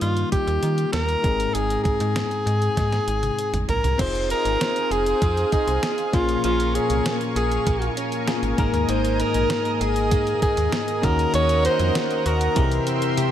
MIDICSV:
0, 0, Header, 1, 7, 480
1, 0, Start_track
1, 0, Tempo, 612245
1, 1210, Time_signature, 4, 2, 24, 8
1, 10438, End_track
2, 0, Start_track
2, 0, Title_t, "Analog synth pad"
2, 0, Program_c, 0, 89
2, 3124, Note_on_c, 0, 87, 79
2, 3125, Note_on_c, 0, 80, 69
2, 3128, Note_on_c, 0, 72, 74
2, 3128, Note_on_c, 0, 77, 67
2, 4790, Note_off_c, 0, 87, 0
2, 4792, Note_off_c, 0, 72, 0
2, 4811, Note_on_c, 0, 70, 76
2, 4812, Note_on_c, 0, 85, 80
2, 6697, Note_off_c, 0, 77, 0
2, 6712, Note_off_c, 0, 85, 0
2, 6721, Note_on_c, 0, 75, 73
2, 6725, Note_on_c, 0, 87, 84
2, 8616, Note_off_c, 0, 80, 0
2, 8619, Note_off_c, 0, 70, 0
2, 8626, Note_off_c, 0, 75, 0
2, 8628, Note_off_c, 0, 87, 0
2, 8647, Note_on_c, 0, 70, 81
2, 8647, Note_on_c, 0, 78, 68
2, 8649, Note_on_c, 0, 75, 70
2, 8650, Note_on_c, 0, 82, 85
2, 9837, Note_off_c, 0, 78, 0
2, 9838, Note_off_c, 0, 75, 0
2, 9838, Note_off_c, 0, 82, 0
2, 9852, Note_on_c, 0, 84, 85
2, 9854, Note_on_c, 0, 76, 70
2, 9855, Note_on_c, 0, 79, 69
2, 10438, Note_off_c, 0, 70, 0
2, 10438, Note_off_c, 0, 76, 0
2, 10438, Note_off_c, 0, 79, 0
2, 10438, Note_off_c, 0, 84, 0
2, 10438, End_track
3, 0, Start_track
3, 0, Title_t, "Alto saxophone"
3, 0, Program_c, 1, 65
3, 14, Note_on_c, 1, 65, 86
3, 235, Note_off_c, 1, 65, 0
3, 252, Note_on_c, 1, 67, 85
3, 700, Note_off_c, 1, 67, 0
3, 726, Note_on_c, 1, 70, 94
3, 1207, Note_on_c, 1, 68, 100
3, 1218, Note_off_c, 1, 70, 0
3, 1437, Note_off_c, 1, 68, 0
3, 1442, Note_on_c, 1, 68, 90
3, 2854, Note_off_c, 1, 68, 0
3, 2897, Note_on_c, 1, 70, 82
3, 3117, Note_off_c, 1, 70, 0
3, 3143, Note_on_c, 1, 72, 100
3, 3360, Note_off_c, 1, 72, 0
3, 3380, Note_on_c, 1, 70, 101
3, 3858, Note_on_c, 1, 68, 105
3, 3870, Note_off_c, 1, 70, 0
3, 4334, Note_off_c, 1, 68, 0
3, 4339, Note_on_c, 1, 68, 93
3, 4815, Note_on_c, 1, 65, 81
3, 4827, Note_off_c, 1, 68, 0
3, 5053, Note_off_c, 1, 65, 0
3, 5057, Note_on_c, 1, 65, 84
3, 5291, Note_on_c, 1, 68, 94
3, 5303, Note_off_c, 1, 65, 0
3, 5641, Note_off_c, 1, 68, 0
3, 5774, Note_on_c, 1, 68, 83
3, 6221, Note_off_c, 1, 68, 0
3, 6733, Note_on_c, 1, 70, 81
3, 6974, Note_on_c, 1, 72, 94
3, 6985, Note_off_c, 1, 70, 0
3, 7215, Note_on_c, 1, 70, 88
3, 7227, Note_off_c, 1, 72, 0
3, 7639, Note_off_c, 1, 70, 0
3, 7639, Note_on_c, 1, 70, 60
3, 7697, Note_on_c, 1, 68, 98
3, 7709, Note_off_c, 1, 70, 0
3, 8169, Note_off_c, 1, 68, 0
3, 8174, Note_on_c, 1, 68, 90
3, 8662, Note_on_c, 1, 70, 90
3, 8674, Note_off_c, 1, 68, 0
3, 8896, Note_off_c, 1, 70, 0
3, 8900, Note_on_c, 1, 73, 115
3, 9119, Note_off_c, 1, 73, 0
3, 9137, Note_on_c, 1, 72, 104
3, 9617, Note_on_c, 1, 70, 96
3, 9629, Note_off_c, 1, 72, 0
3, 10093, Note_off_c, 1, 70, 0
3, 10438, End_track
4, 0, Start_track
4, 0, Title_t, "Tine electric piano"
4, 0, Program_c, 2, 4
4, 0, Control_c, 2, 64, 127
4, 0, Note_on_c, 2, 51, 72
4, 0, Note_on_c, 2, 55, 74
4, 0, Note_on_c, 2, 58, 66
4, 0, Note_on_c, 2, 63, 66
4, 0, Note_on_c, 2, 65, 82
4, 933, Note_off_c, 2, 55, 0
4, 937, Note_off_c, 2, 58, 0
4, 940, Note_off_c, 2, 63, 0
4, 943, Note_off_c, 2, 65, 0
4, 959, Note_on_c, 2, 56, 61
4, 966, Note_on_c, 2, 60, 57
4, 968, Note_on_c, 2, 44, 62
4, 973, Note_on_c, 2, 63, 59
4, 980, Control_c, 2, 64, 0
4, 980, Note_on_c, 2, 68, 66
4, 982, Note_off_c, 2, 51, 0
4, 1120, Control_c, 2, 64, 127
4, 1658, Note_off_c, 2, 44, 0
4, 2853, Note_off_c, 2, 56, 0
4, 2857, Note_off_c, 2, 60, 0
4, 2860, Note_off_c, 2, 63, 0
4, 2864, Note_off_c, 2, 68, 0
4, 3120, Note_on_c, 2, 60, 63
4, 3127, Note_on_c, 2, 63, 56
4, 3133, Note_on_c, 2, 65, 58
4, 3139, Note_on_c, 2, 68, 64
4, 3141, Control_c, 2, 64, 0
4, 3261, Control_c, 2, 64, 127
4, 4774, Note_off_c, 2, 60, 0
4, 4777, Note_off_c, 2, 63, 0
4, 4780, Note_off_c, 2, 65, 0
4, 4783, Note_off_c, 2, 68, 0
4, 4802, Note_on_c, 2, 58, 66
4, 4808, Note_on_c, 2, 61, 62
4, 4812, Note_on_c, 2, 46, 63
4, 4814, Note_on_c, 2, 65, 61
4, 4820, Control_c, 2, 64, 0
4, 4821, Note_on_c, 2, 68, 71
4, 4939, Control_c, 2, 64, 127
4, 5500, Note_off_c, 2, 46, 0
4, 6455, Note_off_c, 2, 58, 0
4, 6458, Note_off_c, 2, 61, 0
4, 6461, Note_off_c, 2, 65, 0
4, 6464, Note_off_c, 2, 68, 0
4, 6483, Note_on_c, 2, 58, 59
4, 6485, Note_on_c, 2, 61, 52
4, 6489, Note_on_c, 2, 65, 53
4, 6491, Note_on_c, 2, 70, 63
4, 6710, Note_off_c, 2, 58, 0
4, 6719, Note_on_c, 2, 58, 66
4, 6725, Note_on_c, 2, 63, 59
4, 6727, Note_off_c, 2, 61, 0
4, 6727, Note_on_c, 2, 44, 63
4, 6729, Note_off_c, 2, 65, 0
4, 6729, Note_off_c, 2, 70, 0
4, 6732, Note_on_c, 2, 68, 57
4, 6738, Note_on_c, 2, 70, 75
4, 6740, Control_c, 2, 64, 0
4, 6869, Control_c, 2, 64, 127
4, 7417, Note_off_c, 2, 44, 0
4, 8613, Note_off_c, 2, 58, 0
4, 8616, Note_off_c, 2, 63, 0
4, 8619, Note_off_c, 2, 68, 0
4, 8623, Note_off_c, 2, 70, 0
4, 8637, Note_on_c, 2, 61, 68
4, 8643, Note_on_c, 2, 63, 61
4, 8645, Note_on_c, 2, 51, 67
4, 8648, Note_on_c, 2, 66, 63
4, 8656, Note_on_c, 2, 70, 74
4, 8660, Control_c, 2, 64, 0
4, 8786, Control_c, 2, 64, 127
4, 9336, Note_off_c, 2, 51, 0
4, 9819, Note_off_c, 2, 61, 0
4, 9822, Note_off_c, 2, 63, 0
4, 9825, Note_off_c, 2, 66, 0
4, 9829, Note_off_c, 2, 70, 0
4, 9840, Note_on_c, 2, 60, 65
4, 9847, Note_on_c, 2, 64, 61
4, 9850, Note_on_c, 2, 48, 67
4, 9853, Note_on_c, 2, 67, 60
4, 9860, Note_on_c, 2, 68, 55
4, 9861, Control_c, 2, 64, 0
4, 9906, Note_off_c, 2, 68, 0
4, 9910, Note_on_c, 2, 70, 72
4, 9983, Control_c, 2, 64, 127
4, 10438, Note_off_c, 2, 48, 0
4, 10438, Note_off_c, 2, 60, 0
4, 10438, Note_off_c, 2, 64, 0
4, 10438, Note_off_c, 2, 67, 0
4, 10438, Note_off_c, 2, 70, 0
4, 10438, End_track
5, 0, Start_track
5, 0, Title_t, "Clean electric guitar"
5, 0, Program_c, 3, 27
5, 3128, Note_on_c, 3, 60, 80
5, 3368, Note_on_c, 3, 63, 57
5, 3601, Note_off_c, 3, 60, 0
5, 3611, Note_on_c, 3, 60, 56
5, 3852, Note_on_c, 3, 68, 59
5, 4084, Note_off_c, 3, 60, 0
5, 4093, Note_on_c, 3, 60, 64
5, 4320, Note_off_c, 3, 63, 0
5, 4329, Note_on_c, 3, 63, 58
5, 4569, Note_off_c, 3, 68, 0
5, 4572, Note_on_c, 3, 68, 66
5, 4813, Note_on_c, 3, 53, 73
5, 4858, Note_off_c, 3, 63, 0
5, 4860, Note_off_c, 3, 60, 0
5, 5044, Note_off_c, 3, 53, 0
5, 5053, Note_on_c, 3, 53, 83
5, 5293, Note_on_c, 3, 61, 57
5, 5531, Note_on_c, 3, 58, 58
5, 5555, Note_off_c, 3, 68, 0
5, 5770, Note_on_c, 3, 68, 63
5, 6005, Note_off_c, 3, 58, 0
5, 6008, Note_on_c, 3, 58, 66
5, 6239, Note_off_c, 3, 61, 0
5, 6248, Note_on_c, 3, 61, 57
5, 6486, Note_off_c, 3, 68, 0
5, 6489, Note_on_c, 3, 68, 68
5, 6727, Note_off_c, 3, 53, 0
5, 6730, Note_on_c, 3, 51, 72
5, 6777, Note_off_c, 3, 61, 0
5, 6969, Note_off_c, 3, 51, 0
5, 6972, Note_on_c, 3, 51, 81
5, 7212, Note_on_c, 3, 63, 60
5, 7447, Note_off_c, 3, 58, 0
5, 7450, Note_on_c, 3, 58, 59
5, 7473, Note_off_c, 3, 68, 0
5, 7688, Note_on_c, 3, 68, 61
5, 7927, Note_off_c, 3, 58, 0
5, 7930, Note_on_c, 3, 58, 69
5, 8168, Note_off_c, 3, 63, 0
5, 8172, Note_on_c, 3, 63, 60
5, 8401, Note_off_c, 3, 68, 0
5, 8411, Note_on_c, 3, 68, 70
5, 8648, Note_off_c, 3, 58, 0
5, 8652, Note_on_c, 3, 58, 77
5, 8698, Note_off_c, 3, 68, 0
5, 8699, Note_off_c, 3, 51, 0
5, 8699, Note_off_c, 3, 63, 0
5, 8890, Note_off_c, 3, 58, 0
5, 8893, Note_on_c, 3, 58, 88
5, 9132, Note_on_c, 3, 61, 63
5, 9361, Note_off_c, 3, 58, 0
5, 9370, Note_on_c, 3, 58, 57
5, 9611, Note_on_c, 3, 66, 63
5, 9852, Note_on_c, 3, 52, 83
5, 9898, Note_off_c, 3, 58, 0
5, 9898, Note_off_c, 3, 66, 0
5, 9899, Note_off_c, 3, 61, 0
5, 10090, Note_on_c, 3, 60, 59
5, 10330, Note_on_c, 3, 67, 68
5, 10438, Note_off_c, 3, 52, 0
5, 10438, Note_off_c, 3, 60, 0
5, 10438, Note_off_c, 3, 67, 0
5, 10438, End_track
6, 0, Start_track
6, 0, Title_t, "FM bass"
6, 0, Program_c, 4, 39
6, 13, Note_on_c, 4, 43, 92
6, 192, Note_off_c, 4, 43, 0
6, 369, Note_on_c, 4, 39, 93
6, 459, Note_off_c, 4, 39, 0
6, 491, Note_on_c, 4, 51, 90
6, 671, Note_off_c, 4, 51, 0
6, 730, Note_on_c, 4, 39, 91
6, 910, Note_off_c, 4, 39, 0
6, 972, Note_on_c, 4, 32, 100
6, 1151, Note_off_c, 4, 32, 0
6, 1214, Note_on_c, 4, 32, 92
6, 1392, Note_off_c, 4, 32, 0
6, 1572, Note_on_c, 4, 44, 94
6, 1751, Note_off_c, 4, 44, 0
6, 1930, Note_on_c, 4, 44, 94
6, 2110, Note_off_c, 4, 44, 0
6, 2171, Note_on_c, 4, 44, 97
6, 2351, Note_off_c, 4, 44, 0
6, 2410, Note_on_c, 4, 32, 88
6, 2590, Note_off_c, 4, 32, 0
6, 2768, Note_on_c, 4, 32, 81
6, 2859, Note_off_c, 4, 32, 0
6, 2889, Note_on_c, 4, 34, 79
6, 2979, Note_off_c, 4, 34, 0
6, 3009, Note_on_c, 4, 36, 78
6, 3099, Note_off_c, 4, 36, 0
6, 3129, Note_on_c, 4, 29, 104
6, 3399, Note_off_c, 4, 29, 0
6, 3489, Note_on_c, 4, 32, 84
6, 3579, Note_off_c, 4, 32, 0
6, 3846, Note_on_c, 4, 29, 91
6, 4027, Note_off_c, 4, 29, 0
6, 4090, Note_on_c, 4, 41, 103
6, 4270, Note_off_c, 4, 41, 0
6, 4448, Note_on_c, 4, 36, 93
6, 4539, Note_off_c, 4, 36, 0
6, 4809, Note_on_c, 4, 34, 97
6, 4989, Note_off_c, 4, 34, 0
6, 5050, Note_on_c, 4, 34, 106
6, 5320, Note_off_c, 4, 34, 0
6, 5409, Note_on_c, 4, 36, 80
6, 5499, Note_off_c, 4, 36, 0
6, 5767, Note_on_c, 4, 34, 88
6, 5948, Note_off_c, 4, 34, 0
6, 6009, Note_on_c, 4, 34, 98
6, 6189, Note_off_c, 4, 34, 0
6, 6605, Note_on_c, 4, 32, 86
6, 6697, Note_off_c, 4, 32, 0
6, 6728, Note_on_c, 4, 32, 93
6, 6819, Note_off_c, 4, 32, 0
6, 6846, Note_on_c, 4, 39, 93
6, 6938, Note_off_c, 4, 39, 0
6, 6966, Note_on_c, 4, 32, 112
6, 7237, Note_off_c, 4, 32, 0
6, 7328, Note_on_c, 4, 34, 88
6, 7419, Note_off_c, 4, 34, 0
6, 7688, Note_on_c, 4, 32, 95
6, 7929, Note_on_c, 4, 44, 103
6, 7941, Note_off_c, 4, 32, 0
6, 8110, Note_off_c, 4, 44, 0
6, 8287, Note_on_c, 4, 39, 84
6, 8378, Note_off_c, 4, 39, 0
6, 8650, Note_on_c, 4, 39, 108
6, 8830, Note_off_c, 4, 39, 0
6, 8887, Note_on_c, 4, 39, 108
6, 9158, Note_off_c, 4, 39, 0
6, 9247, Note_on_c, 4, 41, 92
6, 9338, Note_off_c, 4, 41, 0
6, 9609, Note_on_c, 4, 39, 92
6, 9789, Note_off_c, 4, 39, 0
6, 9850, Note_on_c, 4, 36, 105
6, 10030, Note_off_c, 4, 36, 0
6, 10438, End_track
7, 0, Start_track
7, 0, Title_t, "Drums"
7, 11, Note_on_c, 9, 42, 69
7, 89, Note_off_c, 9, 42, 0
7, 131, Note_on_c, 9, 42, 52
7, 209, Note_off_c, 9, 42, 0
7, 252, Note_on_c, 9, 36, 89
7, 252, Note_on_c, 9, 42, 85
7, 330, Note_off_c, 9, 36, 0
7, 330, Note_off_c, 9, 42, 0
7, 373, Note_on_c, 9, 42, 41
7, 451, Note_off_c, 9, 42, 0
7, 491, Note_on_c, 9, 42, 74
7, 569, Note_off_c, 9, 42, 0
7, 610, Note_on_c, 9, 42, 52
7, 689, Note_off_c, 9, 42, 0
7, 730, Note_on_c, 9, 38, 100
7, 733, Note_on_c, 9, 42, 71
7, 808, Note_off_c, 9, 38, 0
7, 811, Note_off_c, 9, 42, 0
7, 851, Note_on_c, 9, 42, 51
7, 930, Note_off_c, 9, 42, 0
7, 971, Note_on_c, 9, 36, 97
7, 973, Note_on_c, 9, 42, 61
7, 1050, Note_off_c, 9, 36, 0
7, 1051, Note_off_c, 9, 42, 0
7, 1097, Note_on_c, 9, 42, 53
7, 1175, Note_off_c, 9, 42, 0
7, 1214, Note_on_c, 9, 42, 86
7, 1292, Note_off_c, 9, 42, 0
7, 1336, Note_on_c, 9, 42, 50
7, 1414, Note_off_c, 9, 42, 0
7, 1451, Note_on_c, 9, 36, 87
7, 1452, Note_on_c, 9, 42, 66
7, 1530, Note_off_c, 9, 36, 0
7, 1531, Note_off_c, 9, 42, 0
7, 1570, Note_on_c, 9, 42, 54
7, 1649, Note_off_c, 9, 42, 0
7, 1692, Note_on_c, 9, 38, 107
7, 1693, Note_on_c, 9, 42, 81
7, 1771, Note_off_c, 9, 38, 0
7, 1772, Note_off_c, 9, 42, 0
7, 1813, Note_on_c, 9, 42, 44
7, 1891, Note_off_c, 9, 42, 0
7, 1936, Note_on_c, 9, 42, 65
7, 2014, Note_off_c, 9, 42, 0
7, 2052, Note_on_c, 9, 42, 51
7, 2131, Note_off_c, 9, 42, 0
7, 2173, Note_on_c, 9, 36, 91
7, 2174, Note_on_c, 9, 38, 52
7, 2174, Note_on_c, 9, 42, 84
7, 2251, Note_off_c, 9, 36, 0
7, 2252, Note_off_c, 9, 38, 0
7, 2252, Note_off_c, 9, 42, 0
7, 2293, Note_on_c, 9, 38, 44
7, 2293, Note_on_c, 9, 42, 39
7, 2371, Note_off_c, 9, 38, 0
7, 2371, Note_off_c, 9, 42, 0
7, 2412, Note_on_c, 9, 42, 72
7, 2491, Note_off_c, 9, 42, 0
7, 2531, Note_on_c, 9, 42, 51
7, 2533, Note_on_c, 9, 48, 59
7, 2610, Note_off_c, 9, 42, 0
7, 2611, Note_off_c, 9, 48, 0
7, 2654, Note_on_c, 9, 42, 74
7, 2733, Note_off_c, 9, 42, 0
7, 2772, Note_on_c, 9, 42, 53
7, 2773, Note_on_c, 9, 45, 67
7, 2851, Note_off_c, 9, 42, 0
7, 2851, Note_off_c, 9, 45, 0
7, 2891, Note_on_c, 9, 42, 64
7, 2891, Note_on_c, 9, 43, 84
7, 2969, Note_off_c, 9, 42, 0
7, 2970, Note_off_c, 9, 43, 0
7, 3012, Note_on_c, 9, 43, 76
7, 3014, Note_on_c, 9, 42, 53
7, 3091, Note_off_c, 9, 43, 0
7, 3093, Note_off_c, 9, 42, 0
7, 3130, Note_on_c, 9, 36, 104
7, 3130, Note_on_c, 9, 42, 89
7, 3131, Note_on_c, 9, 49, 79
7, 3208, Note_off_c, 9, 36, 0
7, 3209, Note_off_c, 9, 42, 0
7, 3209, Note_off_c, 9, 49, 0
7, 3254, Note_on_c, 9, 42, 50
7, 3333, Note_off_c, 9, 42, 0
7, 3373, Note_on_c, 9, 42, 70
7, 3452, Note_off_c, 9, 42, 0
7, 3492, Note_on_c, 9, 42, 57
7, 3570, Note_off_c, 9, 42, 0
7, 3615, Note_on_c, 9, 38, 108
7, 3616, Note_on_c, 9, 42, 83
7, 3693, Note_off_c, 9, 38, 0
7, 3694, Note_off_c, 9, 42, 0
7, 3732, Note_on_c, 9, 42, 46
7, 3811, Note_off_c, 9, 42, 0
7, 3853, Note_on_c, 9, 42, 69
7, 3932, Note_off_c, 9, 42, 0
7, 3970, Note_on_c, 9, 42, 54
7, 4049, Note_off_c, 9, 42, 0
7, 4091, Note_on_c, 9, 36, 88
7, 4091, Note_on_c, 9, 42, 86
7, 4169, Note_off_c, 9, 36, 0
7, 4169, Note_off_c, 9, 42, 0
7, 4213, Note_on_c, 9, 42, 41
7, 4291, Note_off_c, 9, 42, 0
7, 4330, Note_on_c, 9, 42, 73
7, 4331, Note_on_c, 9, 36, 80
7, 4409, Note_off_c, 9, 36, 0
7, 4409, Note_off_c, 9, 42, 0
7, 4450, Note_on_c, 9, 42, 52
7, 4528, Note_off_c, 9, 42, 0
7, 4570, Note_on_c, 9, 38, 104
7, 4572, Note_on_c, 9, 42, 75
7, 4648, Note_off_c, 9, 38, 0
7, 4651, Note_off_c, 9, 42, 0
7, 4688, Note_on_c, 9, 42, 53
7, 4767, Note_off_c, 9, 42, 0
7, 4809, Note_on_c, 9, 36, 99
7, 4809, Note_on_c, 9, 42, 66
7, 4887, Note_off_c, 9, 36, 0
7, 4887, Note_off_c, 9, 42, 0
7, 4929, Note_on_c, 9, 42, 55
7, 5007, Note_off_c, 9, 42, 0
7, 5048, Note_on_c, 9, 42, 91
7, 5126, Note_off_c, 9, 42, 0
7, 5173, Note_on_c, 9, 42, 53
7, 5252, Note_off_c, 9, 42, 0
7, 5294, Note_on_c, 9, 42, 73
7, 5372, Note_off_c, 9, 42, 0
7, 5408, Note_on_c, 9, 42, 58
7, 5487, Note_off_c, 9, 42, 0
7, 5533, Note_on_c, 9, 38, 116
7, 5534, Note_on_c, 9, 42, 86
7, 5611, Note_off_c, 9, 38, 0
7, 5612, Note_off_c, 9, 42, 0
7, 5651, Note_on_c, 9, 42, 48
7, 5730, Note_off_c, 9, 42, 0
7, 5773, Note_on_c, 9, 42, 72
7, 5851, Note_off_c, 9, 42, 0
7, 5892, Note_on_c, 9, 42, 57
7, 5971, Note_off_c, 9, 42, 0
7, 6010, Note_on_c, 9, 36, 96
7, 6010, Note_on_c, 9, 42, 84
7, 6089, Note_off_c, 9, 36, 0
7, 6089, Note_off_c, 9, 42, 0
7, 6129, Note_on_c, 9, 42, 42
7, 6208, Note_off_c, 9, 42, 0
7, 6249, Note_on_c, 9, 42, 73
7, 6328, Note_off_c, 9, 42, 0
7, 6367, Note_on_c, 9, 42, 52
7, 6445, Note_off_c, 9, 42, 0
7, 6488, Note_on_c, 9, 38, 102
7, 6490, Note_on_c, 9, 42, 74
7, 6566, Note_off_c, 9, 38, 0
7, 6569, Note_off_c, 9, 42, 0
7, 6608, Note_on_c, 9, 42, 52
7, 6687, Note_off_c, 9, 42, 0
7, 6728, Note_on_c, 9, 36, 101
7, 6728, Note_on_c, 9, 42, 65
7, 6806, Note_off_c, 9, 42, 0
7, 6807, Note_off_c, 9, 36, 0
7, 6850, Note_on_c, 9, 42, 53
7, 6928, Note_off_c, 9, 42, 0
7, 6967, Note_on_c, 9, 42, 87
7, 7045, Note_off_c, 9, 42, 0
7, 7092, Note_on_c, 9, 42, 53
7, 7170, Note_off_c, 9, 42, 0
7, 7210, Note_on_c, 9, 42, 72
7, 7288, Note_off_c, 9, 42, 0
7, 7325, Note_on_c, 9, 42, 55
7, 7404, Note_off_c, 9, 42, 0
7, 7447, Note_on_c, 9, 38, 111
7, 7448, Note_on_c, 9, 42, 89
7, 7526, Note_off_c, 9, 38, 0
7, 7526, Note_off_c, 9, 42, 0
7, 7568, Note_on_c, 9, 42, 45
7, 7646, Note_off_c, 9, 42, 0
7, 7691, Note_on_c, 9, 42, 68
7, 7770, Note_off_c, 9, 42, 0
7, 7808, Note_on_c, 9, 42, 54
7, 7887, Note_off_c, 9, 42, 0
7, 7929, Note_on_c, 9, 42, 88
7, 7930, Note_on_c, 9, 36, 90
7, 8008, Note_off_c, 9, 36, 0
7, 8008, Note_off_c, 9, 42, 0
7, 8051, Note_on_c, 9, 42, 46
7, 8129, Note_off_c, 9, 42, 0
7, 8170, Note_on_c, 9, 36, 83
7, 8171, Note_on_c, 9, 42, 78
7, 8249, Note_off_c, 9, 36, 0
7, 8249, Note_off_c, 9, 42, 0
7, 8289, Note_on_c, 9, 42, 55
7, 8367, Note_off_c, 9, 42, 0
7, 8408, Note_on_c, 9, 38, 105
7, 8411, Note_on_c, 9, 42, 76
7, 8487, Note_off_c, 9, 38, 0
7, 8489, Note_off_c, 9, 42, 0
7, 8529, Note_on_c, 9, 42, 54
7, 8608, Note_off_c, 9, 42, 0
7, 8649, Note_on_c, 9, 36, 98
7, 8651, Note_on_c, 9, 42, 68
7, 8728, Note_off_c, 9, 36, 0
7, 8729, Note_off_c, 9, 42, 0
7, 8774, Note_on_c, 9, 42, 52
7, 8852, Note_off_c, 9, 42, 0
7, 8888, Note_on_c, 9, 42, 92
7, 8967, Note_off_c, 9, 42, 0
7, 9010, Note_on_c, 9, 42, 56
7, 9089, Note_off_c, 9, 42, 0
7, 9132, Note_on_c, 9, 42, 73
7, 9211, Note_off_c, 9, 42, 0
7, 9247, Note_on_c, 9, 42, 56
7, 9326, Note_off_c, 9, 42, 0
7, 9371, Note_on_c, 9, 38, 114
7, 9372, Note_on_c, 9, 42, 86
7, 9450, Note_off_c, 9, 38, 0
7, 9450, Note_off_c, 9, 42, 0
7, 9491, Note_on_c, 9, 42, 46
7, 9569, Note_off_c, 9, 42, 0
7, 9610, Note_on_c, 9, 42, 70
7, 9689, Note_off_c, 9, 42, 0
7, 9728, Note_on_c, 9, 42, 55
7, 9807, Note_off_c, 9, 42, 0
7, 9847, Note_on_c, 9, 42, 85
7, 9849, Note_on_c, 9, 36, 95
7, 9925, Note_off_c, 9, 42, 0
7, 9927, Note_off_c, 9, 36, 0
7, 9969, Note_on_c, 9, 42, 45
7, 10047, Note_off_c, 9, 42, 0
7, 10088, Note_on_c, 9, 42, 77
7, 10167, Note_off_c, 9, 42, 0
7, 10207, Note_on_c, 9, 42, 57
7, 10285, Note_off_c, 9, 42, 0
7, 10328, Note_on_c, 9, 48, 55
7, 10329, Note_on_c, 9, 42, 80
7, 10406, Note_off_c, 9, 48, 0
7, 10408, Note_off_c, 9, 42, 0
7, 10438, End_track
0, 0, End_of_file